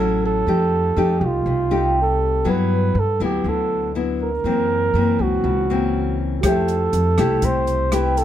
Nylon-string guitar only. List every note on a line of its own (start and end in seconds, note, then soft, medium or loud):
0.00 0.44 A2 soft
0.00 0.46 F#3 soft
0.00 0.46 C#4 soft
0.00 0.46 E4 soft
0.48 1.44 F3 soft
0.48 0.93 A3 soft
0.48 0.93 D#4 soft
0.48 0.93 G4 soft
0.96 1.67 A3 soft
0.96 1.67 D#4 medium
0.96 1.68 G4 soft
1.47 2.44 C3 medium
1.71 2.42 A3 medium
1.71 2.42 D#4 soft
1.71 2.42 G4 medium
2.44 3.42 G2 soft
2.44 2.95 F#3 medium
2.44 2.95 B3 soft
2.44 2.95 E4 medium
3.20 3.91 F#3 medium
3.20 3.91 B3 medium
3.20 3.91 E4 medium
3.46 4.42 D3 soft
3.95 4.28 F#3 soft
3.95 4.29 B3 soft
3.95 4.29 E4 soft
4.45 5.42 F#2 soft
4.45 4.91 E3 soft
4.45 4.91 A#3 soft
4.45 4.91 C4 soft
4.95 5.65 E3 soft
4.95 5.65 A#3 soft
4.95 5.66 C4 medium
5.44 6.41 C#3 medium
5.70 6.40 E3 soft
5.70 6.40 A#3 soft
5.70 6.40 C4 medium
6.43 7.40 F3 soft
6.43 7.14 A3 soft
6.43 7.14 E4 soft
6.43 7.14 G4 medium
7.18 7.89 A3 medium
7.18 7.89 E4 soft
7.18 7.89 G4 medium
7.43 8.24 C3 soft
7.92 8.24 A3 soft
7.92 8.24 E4 soft
7.92 8.24 G4 medium